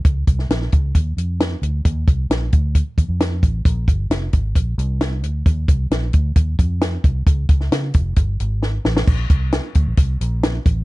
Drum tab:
CC |----------------|----------------|----------------|----------------|
HH |x-x-x-x-x-x-x-x-|x-x-x-x-x-x-x-x-|x-x-x-x-x-x-x-x-|x-x-x-x-x-x-x-x-|
SD |---ooo------o---|----o-------o---|----o-------o---|----o-------o---|
BD |o-o---o-o-------|o-o---o-o-o---o-|o-o---o-o-------|o-o---o-o-o---o-|

CC |----------------|x---------------|
HH |x-x-x-x-x-x-----|--x-x-x-x-x-x-x-|
SD |---oo-------o-oo|----o-------o---|
BD |o-o---o-o-------|o-o---o-o-----o-|